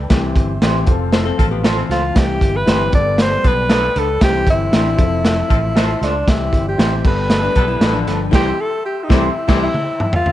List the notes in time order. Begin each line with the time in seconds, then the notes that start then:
0.10 C2 E3 C4 G4 E5 G5 C6, kick, snare, closed hi-hat
0.35 G1, kick, closed hi-hat
0.61 A1 E3 C4 E4 G4 C5, snare, closed hi-hat
0.86 F1 F3 C4 A4 F5 A5, kick, closed hi-hat
1.12 F3 C4 E4 A4 C5, snare, closed hi-hat
1.25 C4 A4
1.38 A1 F3 C4 A4, kick, closed hi-hat
1.51 B3 G4
1.63 F3 A3 C4 F4 A4 C5, snare, closed hi-hat
1.77 E3 C4
1.89 C#2 F4 A4 C5, snare, closed hi-hat
2.15 C2 E3 C4 G4 E5, kick, snare, closed hi-hat
2.41 G1, kick, closed hi-hat
2.56 B4
2.66 G1 E3 C4 E4 G4 C5, snare, closed hi-hat
2.92 G1 G3 A3 A4 B4 D5 A5, kick, closed hi-hat
3.00 B3
3.18 D3 B3 A4 C5, snare, closed hi-hat
3.44 B1 D3 B3 A4 B4, kick, closed hi-hat
3.69 D3 B3 D4 A4 B4, snare, closed hi-hat
3.96 C#2 D4 A4 B4, closed hi-hat
4.21 C2 D#3 C4 G4 C5 E5 C6, kick, snare, closed hi-hat
4.28 E3
4.47 G1 E4, kick, closed hi-hat
4.72 A1 E3 C4 D4 E4 G4 C5, snare, closed hi-hat
4.97 F1 F3 C4 A4 A5, kick, closed hi-hat
5.24 F3 C4 A4, snare, closed hi-hat
5.50 A1 F3 C4 A4, kick, closed hi-hat
5.75 F3 C4 F4 A4 C5, snare, closed hi-hat
6.01 C#2 D4 F4 A4 C5, snare, closed hi-hat
6.27 C2 E3 C4 E4 G4 E5 G5, kick, snare, closed hi-hat
6.52 G1, kick, closed hi-hat
6.68 G4
6.78 A1 E3 C4 E4 G4 C5, snare, closed hi-hat
7.04 G1 G3 B3 A4 B4 D5 G5 A5 B5, kick, crash
7.30 D3 B3 A4, snare, closed hi-hat
7.43 D4 B4
7.55 B1 D3 B3 G4 A4, kick, closed hi-hat
7.68 G3 E4
7.80 A1 D3 B3 D4 A4 B4, snare, closed hi-hat
7.94 F3 D4
8.07 G1 D4 A4 B4, snare, closed hi-hat
8.31 C2 E3 G3 C4 E4 G4 C5 E5 C6 E6, kick, snare, crash
8.60 A4
8.86 G4
9.04 D#4
9.09 C2 E3 G3 C4 E4 G4 C5, kick, snare
9.48 C2 E3 G3 C4 E4 G4 C5, kick, snare, crash
9.63 E4
9.74 high tom
10.00 mid tom
10.13 F4, floor tom
10.26 floor tom